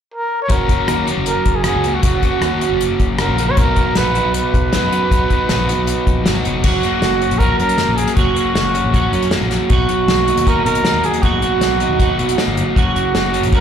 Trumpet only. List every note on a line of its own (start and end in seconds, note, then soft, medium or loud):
0.14 0.40 A#4 medium
0.42 0.53 C#5 medium
0.52 1.09 A#4 medium
1.27 1.57 A#4 medium
1.55 1.64 G#4 medium
1.65 1.96 G#4 medium
1.94 2.03 F#4 medium
2.04 2.77 F#4 medium
3.20 3.46 A#4 medium
3.48 3.60 C#5 medium
3.59 3.99 A#4 medium
3.97 4.35 B4 medium
4.35 6.22 B4 medium
6.64 7.40 F#4 medium
7.39 7.58 A#4 medium
7.59 7.98 A#4 medium
7.97 8.15 G#4 medium
8.16 9.27 F#4 medium
9.70 10.49 F#4 medium
10.48 10.65 A#4 medium
10.65 11.07 A#4 medium
11.05 11.24 G#4 medium
11.23 12.38 F#4 medium
12.76 13.49 F#4 medium
13.55 13.60 A#4 medium